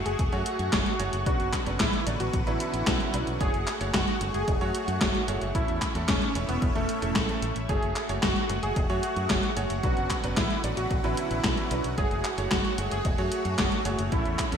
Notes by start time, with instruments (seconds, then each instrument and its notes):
Already playing: grand piano A3 F#4 G#4 F#5, analog synth pad A3 F#4 G#4 F#5 C#6
0.06 fingered electric bass F#1, analog synth lead G#4, closed hi-hat
0.19 fingered electric bass E1, kick, closed hi-hat
0.32 fingered electric bass F#2, grand piano A3 F#4 G#4 C#5, analog synth lead F#4, closed hi-hat
0.46 closed hi-hat
0.59 fingered electric bass F#2, closed hi-hat
0.73 fingered electric bass F#1, grand piano A3 F#4 G#4 C#5, kick, snare, clap, closed hi-hat
0.86 closed hi-hat
0.99 fingered electric bass F#1, grand piano A3 F#4 G#4 C#5, closed hi-hat
1.13 fingered electric bass F#1, closed hi-hat
1.26 fingered electric bass B1, grand piano B2 F#3 C#4 D4 B4, analog synth pad D3 B4, analog synth lead F#4, kick, closed hi-hat
1.40 fingered electric bass F#1, closed hi-hat
1.53 kick, snare, clap, closed hi-hat
1.66 fingered electric bass F#1, grand piano B2 F#3 C#4 D4 B4, closed hi-hat
1.80 fingered electric bass A1, analog synth lead E4, kick, snare, clap, closed hi-hat
1.93 closed hi-hat
2.07 fingered electric bass A1, grand piano B2 F#3 D4 C#5 D5, closed hi-hat
2.20 fingered electric bass A1, analog synth lead F#4, closed hi-hat
2.33 fingered electric bass A1, kick, closed hi-hat
2.47 fingered electric bass A1, grand piano B2 F#3 C#4 D4 B4, analog synth lead E4, closed hi-hat
2.60 closed hi-hat
2.74 fingered electric bass A1, closed hi-hat
2.87 fingered electric bass B1, grand piano B2 F#3 C#4 D4 B4, kick, snare, clap, closed hi-hat
3.00 snare, closed hi-hat
3.14 fingered electric bass B1, grand piano F#3 C#4 D4 B4, closed hi-hat
3.27 fingered electric bass B1, closed hi-hat
3.40 fingered electric bass F#1, grand piano A3 F#4 G#4 C#5, analog synth pad A3 F#4 G#4, analog synth lead G#4, kick, closed hi-hat
3.54 fingered electric bass F#1, closed hi-hat
3.67 clap, closed hi-hat
3.81 fingered electric bass F#1, grand piano A3 F#4 G#4 C#5, closed hi-hat
3.94 fingered electric bass F#1, analog synth lead F#4, kick, snare, clap, closed hi-hat
4.08 closed hi-hat
4.21 fingered electric bass F#1, grand piano A3 F#4 G#4 F#5, closed hi-hat
4.34 fingered electric bass F#1, analog synth lead G#4, closed hi-hat
4.48 fingered electric bass E1, kick, closed hi-hat
4.61 fingered electric bass F#2, grand piano A3 F#4 G#4 C#5, analog synth lead F#4, closed hi-hat
4.75 closed hi-hat
4.88 fingered electric bass F#2, closed hi-hat
5.01 fingered electric bass F#1, grand piano A3 F#4 G#4 C#5, kick, snare, clap, closed hi-hat
5.15 closed hi-hat
5.28 fingered electric bass F#1, grand piano A2 A3 F#4 G#4 C#5, closed hi-hat
5.41 fingered electric bass F#1, closed hi-hat
5.55 fingered electric bass A1, grand piano A2 E3 A3 C#4 A4, analog synth pad C#4 E4 E5, analog synth lead E4, kick, closed hi-hat
5.68 fingered electric bass E2, closed hi-hat
5.82 kick, snare, clap, closed hi-hat
5.95 fingered electric bass E2, grand piano A2 E3 A3 C#4 A4, closed hi-hat
6.08 fingered electric bass E1, analog synth lead C#4, kick, snare, clap, closed hi-hat
6.22 closed hi-hat
6.35 fingered electric bass E1, grand piano A2 E3 A3 C#4 C#5, closed hi-hat
6.48 fingered electric bass E1, analog synth lead B3, closed hi-hat
6.62 fingered electric bass E1, kick, closed hi-hat
6.75 fingered electric bass E1, grand piano A2 E3 A3 C#4 A4, analog synth lead A3, closed hi-hat
6.89 closed hi-hat
7.02 fingered electric bass E1, grand piano A2 E3 A3 C#4 A4, closed hi-hat
7.16 fingered electric bass A1, kick, snare, clap, closed hi-hat
7.29 grand piano A2 E3 A3 C#4 A4, snare, closed hi-hat
7.42 fingered electric bass A1, closed hi-hat
7.56 fingered electric bass A1, closed hi-hat
7.69 fingered electric bass F#1, grand piano A3 F#4 G#4 C#5, analog synth pad F#4 G#4 F#5, analog synth lead G#4, kick, closed hi-hat
7.82 fingered electric bass F#1, closed hi-hat
7.96 clap, closed hi-hat
8.09 fingered electric bass F#1, grand piano A3 F#4 G#4 C#5, closed hi-hat
8.23 fingered electric bass F#1, analog synth lead F#4, kick, snare, clap, closed hi-hat
8.36 closed hi-hat
8.49 fingered electric bass F#1, grand piano A3 F#4 G#4 F#5, closed hi-hat
8.63 fingered electric bass F#1, analog synth lead G#4, closed hi-hat
8.76 fingered electric bass E1, kick, closed hi-hat
8.90 fingered electric bass F#2, grand piano A3 F#4 G#4 C#5, analog synth lead F#4, closed hi-hat
9.03 closed hi-hat
9.16 fingered electric bass F#2, closed hi-hat
9.30 fingered electric bass F#1, grand piano A3 F#4 G#4 C#5, kick, snare, clap, closed hi-hat
9.43 closed hi-hat
9.57 fingered electric bass F#1, grand piano A3 F#4 G#4 C#5, closed hi-hat
9.70 fingered electric bass F#1, closed hi-hat
9.83 fingered electric bass B1, grand piano B2 F#3 C#4 D4 B4, analog synth pad D3 F#4 B4, analog synth lead F#4, kick, closed hi-hat
9.97 fingered electric bass F#1, closed hi-hat
10.10 kick, snare, clap, closed hi-hat
10.24 fingered electric bass F#1, grand piano B2 F#3 C#4 D4 B4, closed hi-hat
10.37 fingered electric bass A1, analog synth lead E4, kick, snare, clap, closed hi-hat
10.50 closed hi-hat
10.64 fingered electric bass A1, grand piano B2 F#3 D4 C#5 D5, closed hi-hat
10.77 fingered electric bass A1, analog synth lead F#4, closed hi-hat
10.91 fingered electric bass A1, kick, closed hi-hat
11.04 fingered electric bass A1, grand piano B2 F#3 C#4 D4 B4, analog synth lead E4, closed hi-hat
11.17 closed hi-hat
11.31 fingered electric bass A1, closed hi-hat
11.44 fingered electric bass B1, grand piano B2 F#3 C#4 D4 B4, kick, snare, clap, closed hi-hat
11.58 snare, closed hi-hat
11.71 fingered electric bass B1, grand piano F#3 C#4 D4 B4, closed hi-hat
11.84 fingered electric bass B1, closed hi-hat
11.98 fingered electric bass F#1, analog synth pad A3 G#4 C#5, grand piano A3 F#4 G#4 C#5, analog synth lead G#4, kick, closed hi-hat
12.11 fingered electric bass F#1, closed hi-hat
12.25 clap, closed hi-hat
12.38 fingered electric bass F#1, grand piano A3 F#4 G#4 C#5, closed hi-hat
12.51 fingered electric bass F#1, analog synth lead F#4, kick, snare, clap, closed hi-hat
12.65 closed hi-hat
12.78 fingered electric bass F#1, grand piano A3 F#4 G#4 F#5, closed hi-hat
12.91 fingered electric bass F#1, analog synth lead G#4, closed hi-hat
13.05 fingered electric bass E1, kick, closed hi-hat
13.18 fingered electric bass F#2, grand piano A3 F#4 G#4 C#5, analog synth lead F#4, closed hi-hat
13.32 closed hi-hat
13.45 fingered electric bass F#2, closed hi-hat
13.58 fingered electric bass F#1, grand piano A3 F#4 G#4 C#5, kick, snare, clap, closed hi-hat
13.72 closed hi-hat
13.85 fingered electric bass F#1, grand piano A2 A3 F#4 G#4 C#5, closed hi-hat
13.99 fingered electric bass F#1, closed hi-hat
14.12 fingered electric bass A1, grand piano A2 E3 A3 C#4 A4, analog synth pad C#4 E4 E5, analog synth lead E4, kick, closed hi-hat
14.25 fingered electric bass E2, closed hi-hat
14.39 kick, snare, clap, closed hi-hat
14.52 fingered electric bass E2, grand piano A2 E3 A3 C#4 A4, closed hi-hat